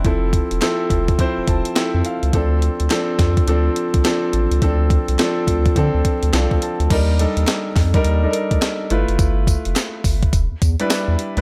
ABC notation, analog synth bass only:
X:1
M:4/4
L:1/16
Q:"Swing 16ths" 1/4=105
K:Ddor
V:1 name="Analog synth bass" clef=bass
F,,,3 E,,, z2 F,,,2 z F,,, F,,, z2 F,, z ^C,, | D,,3 D,, z2 F,,2 D,,2 z C,, z2 A,,, ^C,, | D,,3 C,, z2 D,,2 D, D,, z D,, C,, D,, z D,, | _E,,3 E,, z2 F,,2 E,,2 z D,, z2 G,,, ^F,,, |
G,,,3 F,,, z2 G,,,2 E,,, E,, E,, z2 E,, z D,, |]